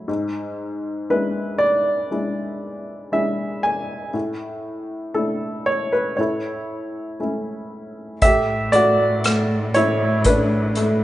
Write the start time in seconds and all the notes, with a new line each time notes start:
Already playing: F#3 A3 A4
0.08 G#2
1.10 G#3 D4 E4 B4
1.58 D5
2.11 G#3 D4 E4
3.12 G#3 D4 E4 E5
3.63 G#5
4.13 A2
5.14 A3 D4 E4 A4
5.66 C#5
5.93 B4
6.17 A2 E4 A4 C#5
7.20 A3 C#4 E4
8.21 A2 A3 G4 E5, kick, closed hi-hat
8.72 A3 F#4 D5, closed hi-hat
9.24 A3, cross-stick, closed hi-hat
9.74 A3 E4 C#5, closed hi-hat
10.24 A3 D4 B4, kick, closed hi-hat
10.75 A3, closed hi-hat